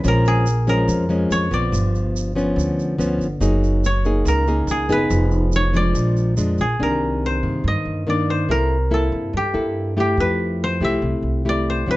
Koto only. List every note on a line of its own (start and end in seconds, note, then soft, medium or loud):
0.00 0.14 A4 medium
0.00 0.14 B4 medium
0.08 0.69 A#4 medium
0.28 2.25 G#4 medium
0.69 2.53 A#4 medium
1.32 1.60 C#5 loud
1.54 3.14 D5 medium
3.86 5.52 C#5 medium
4.28 4.98 A#4 medium
4.71 6.60 G#4 medium
4.92 6.70 B4 loud
5.56 5.83 C#5 loud
5.77 7.37 D5 medium
6.61 8.58 G#4 medium
6.83 8.51 A#4 medium
7.26 8.30 C5 medium
7.68 8.16 D#5 medium
8.10 9.70 D5 medium
8.30 10.02 C5 medium
8.51 9.00 A#4 medium
8.94 10.84 A4 medium
9.37 10.00 G4 medium
10.00 11.97 G4 medium
10.20 10.70 B4 loud
10.64 11.69 C5 medium
10.84 11.97 E5 medium
11.49 11.97 D5 medium
11.70 11.97 C5 medium
11.91 11.97 B4 loud